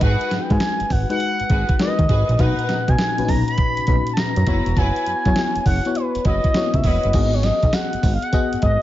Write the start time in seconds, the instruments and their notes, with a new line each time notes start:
Already playing: fm electric piano G#3 D#4 F#4 A#4 B4
0.01 analog synth bass G#1, string section F#4 G#4 B4, analog synth lead F#5, kick, closed hi-hat
0.21 closed hi-hat
0.31 analog synth bass G#2, snare, closed hi-hat
0.42 analog synth lead G5
0.50 analog synth bass G#2, fm electric piano G#3 D#4 F#4 B4, analog synth lead G#5, kick, closed hi-hat
0.60 snare, closed hi-hat
0.80 analog synth bass G#1, closed hi-hat
0.90 analog synth bass G#1, analog synth lead F#5, kick, open hi-hat
1.09 fm electric piano G#3 D#4 F#4 B4, analog synth lead F#5, closed hi-hat
1.20 closed hi-hat
1.40 analog synth bass G#1, closed hi-hat
1.49 analog synth bass G#1, string section F#4 G#4 B4, kick, closed hi-hat
1.69 kick, closed hi-hat
1.79 fm electric piano G#3 D#4 F#4 A#4, analog synth lead D#5, snare, closed hi-hat
1.87 fm electric piano B4
1.99 analog synth bass D#2, kick, closed hi-hat
2.09 analog synth bass G#1, string section F#4 G#4 B4, kick, closed hi-hat
2.29 analog synth bass A#1, closed hi-hat
2.39 analog synth bass B1, fm electric piano A#2 D#4 F#4 B4, string section D#4 A#4 B4, analog synth lead F#5, kick, closed hi-hat
2.59 closed hi-hat
2.69 analog synth bass B2, snare, closed hi-hat
2.88 analog synth bass B2, analog synth lead G#5, kick, closed hi-hat
2.98 snare, closed hi-hat
3.18 analog synth bass B1, fm electric piano A#2 C#4 F#4 B4, closed hi-hat
3.25 analog synth bass B1, fm electric piano D#4, analog synth lead A#5, kick, open hi-hat
3.48 analog synth lead B5, closed hi-hat
3.58 kick, closed hi-hat
3.77 analog synth bass B1, closed hi-hat
3.87 analog synth bass B1, fm electric piano A#2 D#4 F#4 B4, kick, closed hi-hat
4.07 closed hi-hat
4.13 analog synth lead A5, snare, closed hi-hat
4.18 analog synth lead A#5
4.36 analog synth bass F#2, closed hi-hat
4.47 analog synth bass F#1, fm electric piano B3 E4 F#4 C#5, string section E4 F#4 B4, kick, closed hi-hat
4.66 analog synth bass E1, closed hi-hat
4.76 analog synth bass F#1, string section E4 F#4 B4, analog synth lead G#5, kick, closed hi-hat
4.96 closed hi-hat
5.06 analog synth bass F#2, closed hi-hat
5.25 analog synth bass F#2, fm electric piano B3 E4 F#4 C#5, kick, closed hi-hat
5.36 snare, closed hi-hat
5.56 analog synth bass F#1, closed hi-hat
5.66 analog synth bass F#1, analog synth lead F#5, kick, open hi-hat
5.85 fm electric piano B3 E4 F#4 C#5, closed hi-hat
5.95 analog synth lead B4, closed hi-hat
6.15 analog synth bass F#1, closed hi-hat
6.25 analog synth bass F#1, string section E4 F#4 B4, analog synth lead D#5, kick, closed hi-hat
6.44 kick, closed hi-hat
6.54 fm electric piano A#3 E4 F#4 C#5, snare, closed hi-hat
6.62 fm electric piano B3
6.74 analog synth bass C#2, analog synth lead E5, kick, closed hi-hat
6.84 analog synth bass E1, string section E4 F#4 B4, analog synth lead D#5, kick, open hi-hat
7.03 analog synth bass F#1, closed hi-hat
7.13 analog synth bass G#1, fm electric piano B3 F#4 G#4 D#5, kick, closed hi-hat, crash, tambourine
7.33 analog synth lead C#5, closed hi-hat
7.43 analog synth lead D#5, snare, closed hi-hat, tambourine
7.63 analog synth bass B1, kick, closed hi-hat
7.73 analog synth lead F#5, snare, closed hi-hat, tambourine
7.93 analog synth bass G#1, closed hi-hat
8.03 analog synth bass G#1, kick, open hi-hat, tambourine
8.14 analog synth lead F5
8.22 analog synth lead F#5, closed hi-hat
8.32 fm electric piano B3 F#4 G#4 D#5, kick, closed hi-hat, tambourine
8.53 analog synth bass G#1, closed hi-hat
8.62 analog synth bass G#1, analog synth lead D#5, kick, closed hi-hat